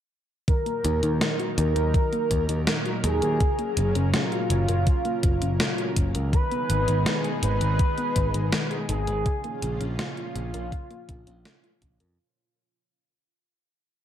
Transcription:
0.48 A#2 D#3 F#3 D#4 A#4, kick, closed hi-hat
0.66 A#3, closed hi-hat
0.85 D#2 D#3, closed hi-hat
1.03 D#2 D#4, closed hi-hat
1.21 D#3, snare, closed hi-hat
1.40 F#4, closed hi-hat
1.58 D#2 D#3 A#4, closed hi-hat
1.76 D#2 A#4, closed hi-hat
1.94 D#3, kick, closed hi-hat
2.13 A#3, closed hi-hat
2.31 D#2 D#3, kick, closed hi-hat
2.49 D#2 D#4, closed hi-hat
2.67 D#3, snare, closed hi-hat
2.85 F#4, closed hi-hat
3.04 D#2 D#3 G#4, closed hi-hat
3.22 D#2 A#4, closed hi-hat
3.40 C#3 C#4, kick, closed hi-hat
3.59 A#3, closed hi-hat
3.77 F#1 C#3, closed hi-hat
3.95 F#1 C#4, closed hi-hat
4.13 C#3 F4, snare, closed hi-hat
4.32 F#4, closed hi-hat
4.50 F#1 C#3, closed hi-hat
4.68 F#1 A#4, closed hi-hat
4.87 C#3, kick, closed hi-hat
5.05 A#3, closed hi-hat
5.23 F#1 C#3, kick, closed hi-hat
5.42 F#1 C#4, closed hi-hat
5.60 C#3, snare, closed hi-hat
5.78 F#4, closed hi-hat
5.96 F#1 C#3, kick, closed hi-hat
6.15 C#2 A#4, closed hi-hat
6.33 B2 D#3 G#3 D#4 G#4 B4, kick, closed hi-hat
6.51 B3, closed hi-hat
6.70 G#1 D#3, closed hi-hat
6.88 G#1 D#4, closed hi-hat
7.06 D#3, snare, closed hi-hat
7.24 G#4, closed hi-hat
7.43 G#1 D#3 B4, closed hi-hat
7.61 G#1 B4, closed hi-hat
7.79 D#3, kick, closed hi-hat
7.98 B3, closed hi-hat
8.16 G#1 D#3, kick, closed hi-hat
8.34 G#1 D#4, closed hi-hat
8.53 D#3, snare, closed hi-hat
8.71 G#4, closed hi-hat
8.89 G#1 D#3 G#4, closed hi-hat
9.07 G#1 B4, closed hi-hat
9.26 A#2 C#3 F3 C#4 F4, kick, closed hi-hat
9.44 A#3, closed hi-hat
9.62 A#1 C#3, closed hi-hat
9.81 A#1 C#4, closed hi-hat
9.99 C#3 F4, snare, closed hi-hat
10.17 F4, closed hi-hat
10.36 A#1 C#3, closed hi-hat
10.54 A#1 A#4, closed hi-hat
10.72 C#3, kick, closed hi-hat
10.90 A#3, closed hi-hat
11.09 A#1 C#3, kick, closed hi-hat
11.27 A#1 C#4, closed hi-hat
11.45 C#3, snare, closed hi-hat
11.64 F4, closed hi-hat
11.82 A#1 C#3, kick, closed hi-hat
12.00 F2 A#4, closed hi-hat

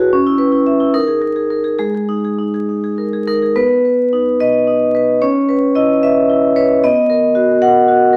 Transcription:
Already playing: E4 G#4 B4 C#5
0.00 F#4
0.13 C#4
0.26 E4
0.38 B4
0.52 E4
0.66 E5
0.80 E4
0.94 D#4 A#4
1.07 G#4
1.22 A#4
1.36 G#4
1.50 A#4
1.64 G#4
1.79 G#3 G#4
1.95 G#4
2.09 D#4
2.24 G#4
2.39 D#4
2.54 G#4
2.69 D#4
2.84 G#4
2.98 A#4
3.13 G#4
3.28 D#4 A#4
3.42 G#4
3.56 B3 B4
3.85 B4
4.13 D#4
4.40 B4 D#5
4.67 D#4
4.95 B4
5.22 C#4 C#5
5.49 B4
5.75 E4 D#5
6.03 B4 E5
6.30 E4
6.56 B4 C#5
6.84 B3 D#5
7.10 A#4
7.35 F#4
7.62 A#4 F#5
7.88 F#4
8.13 A#4

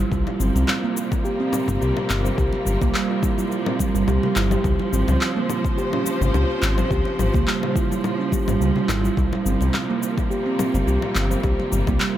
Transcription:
0.00 E4
0.11 C2 C3 F3 G3 A#3, kick, cabasa
0.27 muted conga, low conga
0.40 G1 C4, high conga, cabasa
0.55 C2, muted conga, cabasa
0.68 clap, low conga, cabasa
0.83 A#3, high conga
0.97 cabasa
1.12 kick, low conga, cabasa
1.25 G4, cabasa
1.40 C4
1.53 muted conga, low conga, cabasa
1.68 G1, low conga, cabasa
1.81 C2 G4, cabasa
1.97 low conga
2.10 G1 C4, clap, cabasa
2.25 C5, high conga, cabasa
2.38 C2 G4, kick, low conga, cabasa
2.53 muted conga
2.65 G1, high conga, cabasa
2.82 C2 A#3, kick, muted conga, low conga, cabasa
2.94 G3, clap, cabasa
3.10 F4
3.23 E4, kick, low conga, cabasa
3.38 E4, high conga, cabasa
3.52 cabasa
3.66 C4, low conga
3.79 G3, kick, high conga, cabasa
3.95 G1 G3, cabasa
4.08 C2 G4, low conga, cabasa
4.23 G4, low conga
4.36 G1 E4, clap, cabasa
4.51 G4, high conga, low conga, cabasa
4.64 C#2 C#3 C5, kick, low conga, cabasa
4.79 muted conga
4.93 G#1 C4, high conga, cabasa
5.08 C#2, muted conga, low conga, cabasa
5.21 clap, cabasa
5.36 A#3, high conga
5.50 low conga, cabasa
5.64 kick, cabasa
5.78 G4, cabasa
5.93 C#4, low conga
6.06 muted conga, cabasa
6.21 G#1, low conga, cabasa
6.34 C#2 G4, low conga, cabasa
6.62 G#1 C4, clap, cabasa
6.78 C5, high conga, low conga, cabasa
6.90 C#2 G4, kick, cabasa
7.05 muted conga
7.19 G#1, high conga, low conga, cabasa
7.34 C#2 A#3, kick, muted conga, cabasa
7.47 G3, clap, cabasa
7.62 F4, low conga
7.75 E4, kick, cabasa
7.91 E4, high conga, cabasa
8.04 low conga, cabasa
8.19 C#4
8.32 G4, kick, high conga, cabasa
8.48 G#1 G3, low conga, cabasa
8.61 C#2 G3, cabasa
8.76 F4, low conga
8.89 G#1 E4, clap, low conga, cabasa
9.04 E4, high conga, cabasa
9.17 C2 C3 G3 A#3, kick, cabasa
9.33 muted conga, low conga
9.46 G1 C4, high conga, cabasa
9.61 C2, muted conga, cabasa
9.74 clap, low conga, cabasa
9.89 A#3, high conga
10.03 cabasa
10.18 kick, low conga, cabasa
10.31 G4, cabasa
10.46 C4
10.59 muted conga, low conga, cabasa
10.74 G1, low conga, cabasa
10.87 C2 G4, cabasa
11.02 low conga
11.15 G1 C4, clap, cabasa
11.31 C5, high conga, cabasa
11.43 C2 G4, kick, low conga, cabasa
11.59 muted conga
11.72 G1, high conga, cabasa
11.87 C2 A#3, kick, muted conga, low conga, cabasa
12.00 G3, clap, cabasa

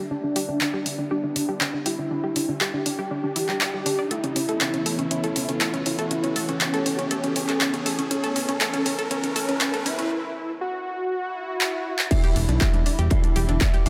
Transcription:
Already playing: D4 G4 E5, riser
0.11 D4
0.24 D4
0.36 G4, open hi-hat
0.49 D4
0.61 D4, clap
0.74 G4
0.86 D4, open hi-hat
0.99 D4
1.11 D4 G4
1.24 D4
1.36 D4, open hi-hat
1.49 G4
1.61 D4, clap
1.74 D4
1.86 E4 G4, open hi-hat
1.99 D4
2.11 D4
2.24 G4
2.36 D4, open hi-hat
2.49 D4
2.61 G4, clap
2.74 D4
2.86 D4, open hi-hat
2.99 G4
3.11 D4
3.24 D4
3.36 E4, open hi-hat
3.49 G4, clap
3.61 D5, clap
3.74 G4
3.86 D4, open hi-hat
3.99 D5
4.11 E3 B3 E4 A4 C#5, closed hi-hat
4.24 C#4, closed hi-hat
4.36 C#4, open hi-hat
4.49 A4, closed hi-hat
4.61 C#4, clap, closed hi-hat
4.74 C#4, closed hi-hat
4.86 A4, open hi-hat
4.99 C#4, closed hi-hat
5.11 C#4 E4, closed hi-hat
5.24 A4, closed hi-hat
5.36 C#4, open hi-hat
5.49 C#4, closed hi-hat
5.61 A4, clap, closed hi-hat
5.74 C#4, closed hi-hat
5.86 C#4 E4, open hi-hat
5.99 A4, closed hi-hat
6.11 C#4, closed hi-hat
6.24 C#4, closed hi-hat
6.36 A4, open hi-hat
6.49 C#4, closed hi-hat
6.61 C#4, clap, closed hi-hat
6.74 A4, closed hi-hat
6.86 C#4, open hi-hat
6.99 C#4, closed hi-hat
7.11 A4, closed hi-hat
7.24 C#4, closed hi-hat
7.36 C#4, open hi-hat
7.49 A4, clap, closed hi-hat
7.61 C#4, clap, closed hi-hat
7.74 C#4, closed hi-hat
7.86 A4, open hi-hat
7.99 C#4, closed hi-hat
8.11 C#4, closed hi-hat
8.24 A4, closed hi-hat
8.36 C#4, open hi-hat
8.49 C#4, closed hi-hat
8.61 A4, clap, closed hi-hat
8.74 C#4, closed hi-hat
8.86 C#4, open hi-hat
8.99 A4, closed hi-hat
9.11 C#4, closed hi-hat
9.24 C#4, closed hi-hat
9.36 A4, open hi-hat
9.49 C#4, closed hi-hat
9.61 C#4, clap, closed hi-hat
9.74 A4, closed hi-hat
9.86 C#4 E4, open hi-hat
9.99 C#4, closed hi-hat
10.61 F#4
11.11 swell
11.61 clap
11.99 clap
12.11 G3 D4 E4 D5 E5, kick, closed hi-hat, crash, ride
12.24 G4, closed hi-hat
12.36 E1 D4, open hi-hat, ride
12.49 B1 D4, snare, closed hi-hat
12.61 G4, kick, snare, clap, closed hi-hat, ride
12.74 E1 D4, closed hi-hat
12.86 D4, open hi-hat, ride
12.99 E1 G4, closed hi-hat
13.10 D4 E4 E5, kick, closed hi-hat, ride
13.24 D4, closed hi-hat
13.36 E1 G4, open hi-hat, ride
13.49 E1 D4, closed hi-hat, ride
13.61 D4, kick, snare, clap, closed hi-hat, ride
13.73 G4, closed hi-hat, ride
13.86 E1 D4 E4 E5, open hi-hat

